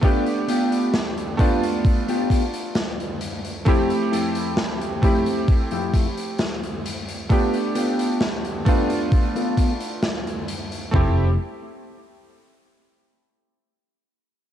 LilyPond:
<<
  \new Staff \with { instrumentName = "Clean electric guitar" } { \time 4/4 \key f \lydian \tempo 4 = 66 <b f' g'>16 r16 <b f' g'>8 r8 <b f' g'>16 r8 <b f' g'>16 r4. | <f, a e' g'>16 r16 <f, a e' a'>8 r8 <f, a e' g'>16 r8 <f, a e' g'>16 r4. | <b f' g'>16 r16 <b f' g'>8 r8 <b f' g'>16 r8 <b f' a'>16 r4. | <a e' g'>8 r2. r8 | }
  \new Staff \with { instrumentName = "Electric grand piano" } { \time 4/4 \key f \lydian <a b d' g'>4. <a b d' f'>2~ <a b d' f'>8 | <a c' e' g'>4. <a c' e' g'>2~ <a c' e' g'>8 | <a b d' g'>4. <a b d' f'>2~ <a b d' f'>8 | <a c' e' g'>8 r2. r8 | }
  \new Staff \with { instrumentName = "Fretless electric bass" } { \clef bass \time 4/4 \key f \lydian r1 | r1 | r1 | f,,8 r2. r8 | }
  \new DrumStaff \with { instrumentName = "Drums" } \drummode { \time 4/4 <hh bd>16 hh16 hh16 hh16 <hh sn>16 hh16 <hh bd>16 hh16 <hh bd>16 hh16 <hh bd>16 hh16 <hh sn>16 hh16 hh16 hh16 | <hh bd>16 hh16 hh16 hh16 <hh sn>16 hh16 <hh bd>16 hh16 <hh bd>16 hh16 <hh bd>16 hh16 <hh sn>16 hh16 hh16 hh16 | <hh bd>16 hh16 hh16 hh16 <hh sn>16 hh16 <hh bd>16 hh16 <hh bd>16 hh16 <hh bd>16 hh16 <hh sn>16 hh16 hh16 hh16 | <bd tomfh>4 r4 r4 r4 | }
>>